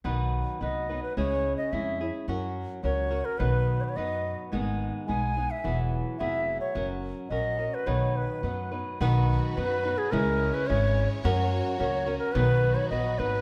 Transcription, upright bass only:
X:1
M:2/4
L:1/8
Q:1/4=108
K:B
V:1 name="Upright bass" clef=bass
B,,,2 =C,,2 | C,,2 ^E,,2 | F,,2 C,,2 | B,,,2 F,,2 |
G,,,2 B,,,2 | E,,,2 ^E,,,2 | F,,,2 A,,,2 | B,,,2 F,,2 |
B,,,2 F,,2 | C,,2 G,,,2 | F,,2 C,,2 | B,,,2 A,,, G,,, |]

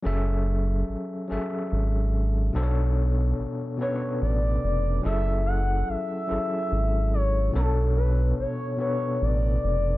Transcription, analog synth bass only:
X:1
M:6/8
L:1/8
Q:3/8=48
K:F#m
V:1 name="Analog synth bass" clef=bass
F,,,2 G,,, G,,, G,,,2 | B,,,2 A,,, z A,,, ^E,,, | F,,,2 G,,, G,,, G,,,2 | B,,,2 A,,, z A,,, ^E,,, |]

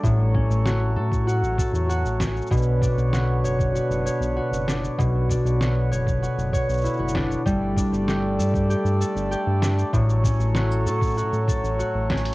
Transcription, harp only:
X:1
M:4/4
L:1/16
Q:1/4=97
K:Bm
V:1 name="Harp"
A,,2 C2 F2 A2 F2 A2 F2 C2 | B,,2 D2 F2 c2 F2 c2 F2 D2 | B,,2 D2 F2 c2 F2 c2 E F D2 | G,2 D2 G2 A2 G2 A2 G2 D2 |
A,,2 C2 F2 A2 F2 A2 F2 C2 |]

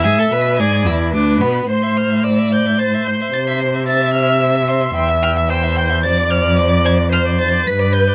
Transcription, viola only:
X:1
M:3/4
L:1/8
Q:1/4=110
K:C
V:1 name="Viola"
e2 d2 B2 | c2 d2 c2- | c2 e4 | [K:Ddor] e2 c2 d2- |
d2 c2 B2 |]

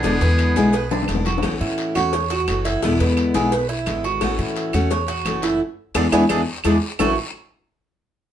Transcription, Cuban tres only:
X:1
M:4/4
L:1/8
Q:1/4=173
K:A
V:1 name="Cuban tres"
D B2 G B D2 F | z E2 F c F2 E | E B2 G B E2 F- | F E2 F c F2 E |
z2 [DEG] [DEG] [DEG] z [DEG] z | [A,EF] z6 z |]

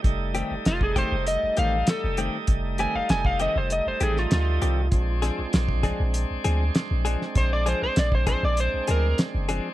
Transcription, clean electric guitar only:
X:1
M:4/4
L:1/8
Q:1/4=98
K:Fmix
V:1 name="Clean electric guitar"
z [E,A,CG] z [E,A,CG] z [E,A,CG] z [E,A,CG] | z [E,A,CG] z [E,A,CG] z [E,A,CG] z [E,A,CG] | z [F,CD_A] z [F,CDA] z [F,CDA] z [F,CDA] | z [F,CD_A] z [F,CDA] z [F,CDA] z [F,CDA] |]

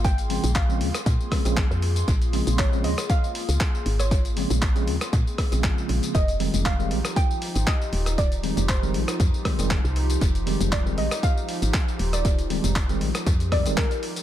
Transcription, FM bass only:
X:1
M:4/4
L:1/16
Q:"Swing 16ths" 1/4=118
K:Bbdor
V:1 name="FM bass" clef=bass
A,,,3 B,,,3 E,, z B,, z2 B,,,2 F,,3 | B,,,3 B,,,3 E,, z4 D,, z2 A,,,2- | A,,,3 B,,,3 E,, z B,, z2 B,,,2 z B,,, z | F,,,3 F,,,3 B,,, z4 A,,, z2 E,,,2- |
E,,,3 F,,,3 B,,, z F,, z2 F,,,2 C,,3 | F,,,3 F,,,3 B,,, z4 A,,, z2 E,,,2- | E,,,3 F,,,3 B,,, z F,,3 F,,, z4 |]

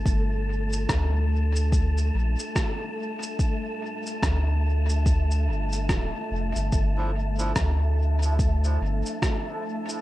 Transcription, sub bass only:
X:1
M:4/4
L:1/16
Q:"Swing 16ths" 1/4=72
K:Gdor
V:1 name="Sub bass" clef=bass
G,,,4 D,,6 B,,, z4 z | z4 D,,6 G,,,2 D,,, z F,,, G,,, | G,,,4 D,,6 G,,, z4 z |]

